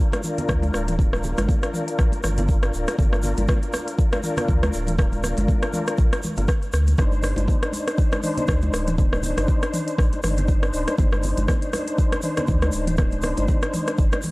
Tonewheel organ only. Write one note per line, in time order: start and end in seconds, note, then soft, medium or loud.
0.00 0.21 D4 medium
0.00 0.21 F4 medium
0.00 0.21 A#4 medium
0.24 0.96 D4 medium
0.24 0.96 F4 medium
0.24 0.96 A#4 medium
0.99 2.21 D4 medium
0.99 2.21 F4 medium
0.99 2.21 A#4 medium
2.24 2.96 D4 medium
2.24 2.96 F4 medium
2.24 2.96 A#4 medium
2.99 4.21 D4 medium
2.99 4.21 F4 medium
2.99 4.21 A#4 medium
4.23 4.96 D4 medium
4.23 4.96 F4 medium
4.23 4.96 A#4 medium
4.98 6.21 D4 medium
4.98 6.21 F4 medium
4.98 6.21 A#4 medium
6.38 6.51 D4 medium
6.38 6.51 F4 medium
6.38 6.51 A#4 medium
6.98 8.21 D4 medium
6.98 8.21 D#4 medium
6.98 8.21 C5 medium
8.23 8.96 D4 medium
8.23 8.96 D#4 medium
8.23 8.96 C5 loud
8.98 10.21 D4 medium
8.98 10.21 D#4 medium
8.98 10.21 C5 medium
10.23 10.96 D4 medium
10.23 10.96 D#4 medium
10.23 10.96 C5 loud
10.98 12.21 D4 medium
10.98 12.21 D#4 medium
10.98 12.21 C5 medium
12.24 12.96 D4 medium
12.24 12.96 D#4 medium
12.24 12.96 C5 loud
12.98 14.21 D4 medium
12.98 14.21 D#4 medium
12.98 14.21 C5 medium